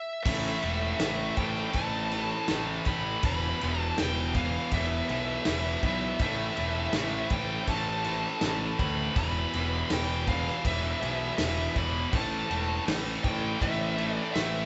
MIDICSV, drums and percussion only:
0, 0, Header, 1, 2, 480
1, 0, Start_track
1, 0, Key_signature, 0, "minor"
1, 0, Tempo, 741656
1, 167, Time_signature, 4, 2, 24, 8
1, 9484, End_track
2, 0, Start_track
2, 0, Title_t, "Drums"
2, 166, Note_on_c, 9, 36, 114
2, 170, Note_on_c, 9, 49, 111
2, 170, Note_on_c, 9, 57, 74
2, 230, Note_off_c, 9, 36, 0
2, 235, Note_off_c, 9, 49, 0
2, 235, Note_off_c, 9, 57, 0
2, 405, Note_on_c, 9, 57, 56
2, 470, Note_off_c, 9, 57, 0
2, 646, Note_on_c, 9, 38, 111
2, 646, Note_on_c, 9, 57, 79
2, 710, Note_off_c, 9, 38, 0
2, 710, Note_off_c, 9, 57, 0
2, 885, Note_on_c, 9, 57, 63
2, 888, Note_on_c, 9, 36, 89
2, 949, Note_off_c, 9, 57, 0
2, 953, Note_off_c, 9, 36, 0
2, 1003, Note_on_c, 9, 38, 35
2, 1068, Note_off_c, 9, 38, 0
2, 1121, Note_on_c, 9, 57, 74
2, 1129, Note_on_c, 9, 36, 81
2, 1186, Note_off_c, 9, 57, 0
2, 1193, Note_off_c, 9, 36, 0
2, 1369, Note_on_c, 9, 57, 61
2, 1433, Note_off_c, 9, 57, 0
2, 1605, Note_on_c, 9, 38, 112
2, 1605, Note_on_c, 9, 57, 79
2, 1670, Note_off_c, 9, 38, 0
2, 1670, Note_off_c, 9, 57, 0
2, 1845, Note_on_c, 9, 57, 62
2, 1853, Note_on_c, 9, 36, 89
2, 1909, Note_off_c, 9, 57, 0
2, 1917, Note_off_c, 9, 36, 0
2, 2089, Note_on_c, 9, 57, 83
2, 2093, Note_on_c, 9, 36, 113
2, 2153, Note_off_c, 9, 57, 0
2, 2158, Note_off_c, 9, 36, 0
2, 2338, Note_on_c, 9, 57, 67
2, 2402, Note_off_c, 9, 57, 0
2, 2575, Note_on_c, 9, 38, 116
2, 2575, Note_on_c, 9, 57, 88
2, 2640, Note_off_c, 9, 38, 0
2, 2640, Note_off_c, 9, 57, 0
2, 2812, Note_on_c, 9, 57, 66
2, 2814, Note_on_c, 9, 36, 92
2, 2876, Note_off_c, 9, 57, 0
2, 2879, Note_off_c, 9, 36, 0
2, 3050, Note_on_c, 9, 57, 80
2, 3054, Note_on_c, 9, 36, 76
2, 3115, Note_off_c, 9, 57, 0
2, 3118, Note_off_c, 9, 36, 0
2, 3295, Note_on_c, 9, 57, 62
2, 3359, Note_off_c, 9, 57, 0
2, 3529, Note_on_c, 9, 38, 111
2, 3529, Note_on_c, 9, 57, 88
2, 3594, Note_off_c, 9, 38, 0
2, 3594, Note_off_c, 9, 57, 0
2, 3771, Note_on_c, 9, 57, 61
2, 3773, Note_on_c, 9, 36, 86
2, 3836, Note_off_c, 9, 57, 0
2, 3838, Note_off_c, 9, 36, 0
2, 4008, Note_on_c, 9, 57, 80
2, 4011, Note_on_c, 9, 36, 101
2, 4072, Note_off_c, 9, 57, 0
2, 4076, Note_off_c, 9, 36, 0
2, 4251, Note_on_c, 9, 57, 63
2, 4316, Note_off_c, 9, 57, 0
2, 4484, Note_on_c, 9, 38, 118
2, 4484, Note_on_c, 9, 57, 78
2, 4549, Note_off_c, 9, 38, 0
2, 4549, Note_off_c, 9, 57, 0
2, 4724, Note_on_c, 9, 57, 61
2, 4729, Note_on_c, 9, 36, 95
2, 4788, Note_off_c, 9, 57, 0
2, 4794, Note_off_c, 9, 36, 0
2, 4966, Note_on_c, 9, 57, 77
2, 4968, Note_on_c, 9, 36, 78
2, 5031, Note_off_c, 9, 57, 0
2, 5033, Note_off_c, 9, 36, 0
2, 5206, Note_on_c, 9, 57, 55
2, 5270, Note_off_c, 9, 57, 0
2, 5444, Note_on_c, 9, 38, 118
2, 5444, Note_on_c, 9, 57, 76
2, 5509, Note_off_c, 9, 38, 0
2, 5509, Note_off_c, 9, 57, 0
2, 5690, Note_on_c, 9, 36, 84
2, 5690, Note_on_c, 9, 57, 59
2, 5755, Note_off_c, 9, 36, 0
2, 5755, Note_off_c, 9, 57, 0
2, 5928, Note_on_c, 9, 57, 80
2, 5929, Note_on_c, 9, 36, 110
2, 5993, Note_off_c, 9, 57, 0
2, 5994, Note_off_c, 9, 36, 0
2, 6171, Note_on_c, 9, 57, 67
2, 6236, Note_off_c, 9, 57, 0
2, 6409, Note_on_c, 9, 38, 108
2, 6409, Note_on_c, 9, 57, 86
2, 6474, Note_off_c, 9, 38, 0
2, 6474, Note_off_c, 9, 57, 0
2, 6649, Note_on_c, 9, 57, 65
2, 6651, Note_on_c, 9, 36, 83
2, 6714, Note_off_c, 9, 57, 0
2, 6715, Note_off_c, 9, 36, 0
2, 6778, Note_on_c, 9, 38, 34
2, 6843, Note_off_c, 9, 38, 0
2, 6891, Note_on_c, 9, 36, 87
2, 6893, Note_on_c, 9, 57, 78
2, 6956, Note_off_c, 9, 36, 0
2, 6957, Note_off_c, 9, 57, 0
2, 7135, Note_on_c, 9, 57, 60
2, 7200, Note_off_c, 9, 57, 0
2, 7367, Note_on_c, 9, 38, 121
2, 7367, Note_on_c, 9, 57, 90
2, 7431, Note_off_c, 9, 38, 0
2, 7431, Note_off_c, 9, 57, 0
2, 7610, Note_on_c, 9, 36, 89
2, 7612, Note_on_c, 9, 57, 63
2, 7675, Note_off_c, 9, 36, 0
2, 7676, Note_off_c, 9, 57, 0
2, 7851, Note_on_c, 9, 36, 112
2, 7851, Note_on_c, 9, 57, 79
2, 7915, Note_off_c, 9, 36, 0
2, 7915, Note_off_c, 9, 57, 0
2, 8095, Note_on_c, 9, 57, 59
2, 8160, Note_off_c, 9, 57, 0
2, 8337, Note_on_c, 9, 38, 116
2, 8337, Note_on_c, 9, 57, 90
2, 8402, Note_off_c, 9, 38, 0
2, 8402, Note_off_c, 9, 57, 0
2, 8571, Note_on_c, 9, 36, 96
2, 8571, Note_on_c, 9, 57, 57
2, 8635, Note_off_c, 9, 36, 0
2, 8635, Note_off_c, 9, 57, 0
2, 8812, Note_on_c, 9, 36, 88
2, 8816, Note_on_c, 9, 57, 74
2, 8876, Note_off_c, 9, 36, 0
2, 8881, Note_off_c, 9, 57, 0
2, 9049, Note_on_c, 9, 57, 60
2, 9114, Note_off_c, 9, 57, 0
2, 9291, Note_on_c, 9, 38, 113
2, 9291, Note_on_c, 9, 57, 77
2, 9356, Note_off_c, 9, 38, 0
2, 9356, Note_off_c, 9, 57, 0
2, 9484, End_track
0, 0, End_of_file